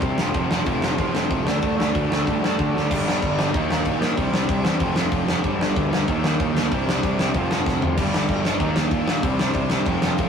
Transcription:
0.00 picked electric bass C3, overdriven electric guitar C3 G3 C4, kick, crash
0.17 picked electric bass F1, overdriven electric guitar F2 C3 F3, snare
0.34 picked electric bass F1, overdriven electric guitar F2 C3 F3, kick, crash
0.50 picked electric bass F1, overdriven electric guitar F2 C3 F3, snare
0.66 picked electric bass F1, overdriven electric guitar F2 C3 F3, kick, crash
0.82 picked electric bass F1, overdriven electric guitar F2 C3 F3, snare
0.98 picked electric bass F1, overdriven electric guitar F2 C3 F3, kick, crash
1.15 picked electric bass F1, overdriven electric guitar F2 C3 F3, snare
1.30 picked electric bass C2, overdriven electric guitar F2 C3 F3, kick, crash
1.45 picked electric bass D2, overdriven electric guitar D3 A3 D4, snare
1.61 picked electric bass D2, overdriven electric guitar D3 A3 D4, kick, crash
1.76 overdriven electric guitar D3 A3 D4, snare
1.92 picked electric bass D2, overdriven electric guitar D3 A3 D4, kick, crash
2.09 picked electric bass D2, overdriven electric guitar D3 A3 D4, snare
2.25 picked electric bass G2, overdriven electric guitar D3 A3 D4, kick, crash
2.42 overdriven electric guitar D3 A3 D4, snare
2.57 overdriven electric guitar D3 A3 D4, picked electric bass D3, kick, crash
2.72 picked electric bass D2, overdriven electric guitar D3 A3 D4
2.77 snare
2.87 picked electric bass G1, overdriven electric guitar G2 D3 G3, kick, crash
3.06 picked electric bass G1, snare
3.22 picked electric bass G1, kick, crash
3.37 overdriven electric guitar G2 D3 G3, snare
3.52 picked electric bass D#2, overdriven electric guitar D#3 A#3 D#4, kick, crash
3.69 picked electric bass D#2, snare
3.85 picked electric bass A#2, kick, crash
3.99 picked electric bass A#2, overdriven electric guitar D#3 A#3 D#4, snare
4.16 picked electric bass C2, overdriven electric guitar C3 G3 C4, kick, crash
4.31 picked electric bass C2, snare
4.49 picked electric bass C2, kick, crash
4.64 picked electric bass E2, overdriven electric guitar C3 G3 C4, snare
4.79 picked electric bass F1, overdriven electric guitar F2 C3 F3, kick, crash
4.96 picked electric bass F1, snare
5.11 picked electric bass F1, kick, crash
5.26 picked electric bass F1, overdriven electric guitar F2 C3 F3, snare
5.41 picked electric bass G1, overdriven electric guitar G2 D3 G3, kick, crash
5.60 picked electric bass G1, snare
5.76 picked electric bass D2, kick, crash
5.91 overdriven electric guitar G2 D3 G3, snare
6.05 picked electric bass D#2, overdriven electric guitar D#3 A#3 D#4, kick, crash
6.24 picked electric bass D#2, snare
6.40 picked electric bass A#2, kick, crash
6.54 picked electric bass D2, overdriven electric guitar D#3 A#3 D#4, snare
6.69 picked electric bass C2, overdriven electric guitar C3 G3 C4, kick, crash
6.87 picked electric bass C2, snare
7.03 picked electric bass C2, kick, crash
7.17 picked electric bass C2, overdriven electric guitar C3 G3 C4, snare
7.33 picked electric bass F1, overdriven electric guitar F2 C3 F3, kick, crash
7.50 picked electric bass F1, snare
7.66 picked electric bass F1, kick, snare
7.81 picked electric bass D2, overdriven electric guitar F2 C3 F3, floor tom
7.96 picked electric bass G1, overdriven electric guitar G2 D3 G3, kick, crash
8.13 picked electric bass G1, snare
8.28 picked electric bass G1, kick, crash
8.44 overdriven electric guitar G2 D3 G3, snare
8.59 picked electric bass D#2, overdriven electric guitar D#3 A#3 D#4, kick, crash
8.76 picked electric bass D#2, snare
8.91 picked electric bass A#2, kick, crash
9.06 picked electric bass A#2, overdriven electric guitar D#3 A#3 D#4, snare
9.21 picked electric bass C2, overdriven electric guitar C3 G3 C4, kick, crash
9.39 picked electric bass C2, snare
9.53 picked electric bass C2, kick, crash
9.69 picked electric bass C2, overdriven electric guitar C3 G3 C4, snare
9.85 picked electric bass F1, overdriven electric guitar F2 C3 F3, kick, crash
10.02 picked electric bass F1, snare
10.18 picked electric bass F1, kick, crash

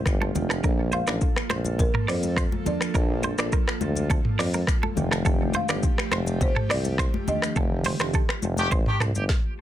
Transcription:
Already playing: analog synth pad D#3 A3 F4 G4
0.06 tuba G1, finger snap, kick, cross-stick, low conga, shaker
0.22 clean electric guitar A4, high conga
0.34 tuba F1, fm electric piano D#3 A3 D4 G4, high conga, low conga, shaker
0.50 clean electric guitar A4, finger snap, cross-stick, shaker
0.63 tuba A#1, fm electric piano F3 A#3 D4 A4, analog synth pad F3 A#3 A4, clean electric guitar A#4, kick, shaker
0.92 clean electric guitar C5, marimba F5, high conga, shaker
1.07 tuba A1, fm electric piano F3 A#3 D4 A4, clean electric guitar D5, finger snap, cross-stick, shaker
1.21 kick, shaker
1.36 finger snap, cross-stick
1.50 tuba A#1, clean electric guitar C5, finger snap, cross-stick, high conga, shaker
1.65 high conga, shaker
1.79 marimba A#4, kick, low conga, shaker
1.94 clean electric guitar A#4, mid tom
2.08 tuba F2, marimba C5, clean electric guitar D5, finger snap, cross-stick, open hi-hat, shaker
2.23 high conga, shaker
2.36 clean electric guitar C5, finger snap, kick, cross-stick, shaker
2.52 high conga
2.65 fm electric piano F3 A#3 D4 A4, marimba D5, high conga, low conga, shaker
2.81 finger snap, cross-stick, shaker
2.94 tuba A#1, fm electric piano F3 A#3 D4 A4, clean electric guitar A#4, kick, shaker
3.23 clean electric guitar C5, high conga, shaker
3.38 tuba A#1, fm electric piano F3 A#3 D4 A4, clean electric guitar D5, finger snap, cross-stick, shaker
3.52 clean electric guitar A#4, kick, shaker
3.68 finger snap, cross-stick
3.81 tuba D2, high conga, shaker
3.96 high conga, shaker
4.10 clean electric guitar A4, kick, low conga, shaker
4.25 mid tom
4.39 tuba F2, clean electric guitar D5, finger snap, cross-stick, open hi-hat, shaker
4.54 clean electric guitar A#4, high conga, shaker
4.67 finger snap, kick, cross-stick, shaker
4.83 clean electric guitar A4, high conga
4.96 tuba F1, fm electric piano D#3 A3 D4 G4, analog synth pad F3 A3 G4, high conga, low conga, shaker
5.11 clean electric guitar A4, finger snap, cross-stick, shaker
5.25 fm electric piano D#3 A3 D4 G4, clean electric guitar A4, kick, shaker
5.54 clean electric guitar C5, marimba F5, high conga, shaker
5.69 tuba G1, fm electric piano D#3 A3 D4 G4, clean electric guitar D5, finger snap, cross-stick, shaker
5.83 kick, shaker
5.98 finger snap, cross-stick
6.12 tuba F1, clean electric guitar C5, finger snap, cross-stick, high conga, shaker
6.26 high conga, shaker
6.41 marimba C5, kick, low conga, shaker
6.56 clean electric guitar A4, mid tom
6.70 tuba C2, clean electric guitar D5, marimba D5, finger snap, cross-stick, open hi-hat, shaker
6.85 high conga, shaker
6.98 clean electric guitar C5, finger snap, kick, cross-stick, shaker
7.14 high conga
7.27 fm electric piano D#3 A3 D4 G4, marimba D#5, high conga, low conga, shaker
7.42 finger snap, cross-stick, shaker
7.56 tuba F1, fm electric piano D3 D#3 A3 G4, clean electric guitar A4, kick, shaker
7.84 clean electric guitar C5, open hi-hat, high conga, shaker
8.00 tuba F1, fm electric piano D#3 A3 D4 G4, clean electric guitar C5, finger snap, cross-stick, shaker
8.14 clean electric guitar A4, kick, shaker
8.29 finger snap, cross-stick
8.42 tuba F1, high conga, shaker
8.57 horn section D#3 D4 G4, high conga, shaker
8.71 tuba A1, clean electric guitar C5, kick, low conga, shaker
8.86 horn section D#3 D4 G4, mid tom
9.00 tuba C2, clean electric guitar A4, finger snap, cross-stick, mid tom, shaker
9.15 tuba G1, clean electric guitar G4, high conga, shaker
9.29 kick, snare

